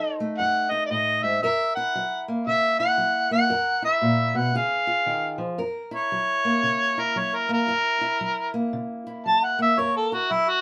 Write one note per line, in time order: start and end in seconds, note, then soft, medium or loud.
0.00 0.35 F#3 medium
0.00 0.70 D#4 medium
0.00 1.41 A4 medium
0.00 0.15 F#5 medium
0.20 1.43 A3 medium
0.37 0.87 F#2 medium
0.37 0.72 F#5 loud
0.70 1.40 D#4 medium
0.70 0.85 D#5 medium
0.86 0.92 D5 medium
0.90 1.23 A2 medium
0.90 1.24 D#5 medium
1.23 1.42 G#2 medium
1.23 1.42 E5 medium
1.42 1.90 F#2 medium
1.42 3.49 A#4 medium
1.42 1.72 E5 medium
1.75 2.79 E4 medium
1.75 2.23 F#5 medium
1.95 2.43 F#3 medium
2.28 3.30 A#3 medium
2.47 2.95 C#3 medium
2.47 2.77 E5 loud
2.79 3.48 E4 medium
2.79 3.27 F#5 loud
2.98 3.46 F#3 medium
3.31 3.48 A#3 medium
3.31 3.80 F#5 loud
3.50 3.98 F#2 medium
3.50 4.52 A#4 medium
3.82 4.52 E4 medium
3.82 4.39 E5 medium
4.02 4.35 A#2 medium
4.35 4.54 B2 medium
4.35 4.58 F#5 medium
4.55 5.03 C#3 medium
4.55 5.57 G#4 medium
4.55 5.40 F5 medium
4.87 5.57 F4 medium
5.06 5.39 D#3 medium
5.38 5.58 F3 medium
5.58 6.07 F#2 medium
5.58 7.71 A#4 medium
5.91 6.97 E4 medium
5.91 7.01 C#5 loud
6.12 6.60 F#3 medium
6.45 7.49 A#3 medium
6.63 7.12 C#3 medium
6.98 7.68 E4 medium
6.98 7.20 A#4 medium
7.16 7.64 F#3 medium
7.16 7.38 C#5 medium
7.36 7.51 A#4 medium
7.49 7.71 A#3 medium
7.53 8.53 A#4 loud
7.67 8.16 F#2 medium
7.67 8.01 E4 medium
8.01 9.06 E4 medium
8.21 8.69 F#3 medium
8.54 9.58 A#3 medium
8.73 9.21 C#3 medium
9.07 9.81 E4 medium
9.26 9.74 F#3 medium
9.26 9.45 A5 loud
9.44 9.60 F#5 medium
9.59 10.15 A#3 medium
9.59 9.81 E5 medium
9.78 10.26 F#2 medium
9.78 10.61 A#4 medium
9.78 9.95 C#5 medium
9.96 10.16 A4 medium
10.12 10.61 E4 medium
10.12 10.33 F#4 medium
10.31 10.61 F#3 medium
10.31 10.51 E4 medium
10.49 10.61 F#4 loud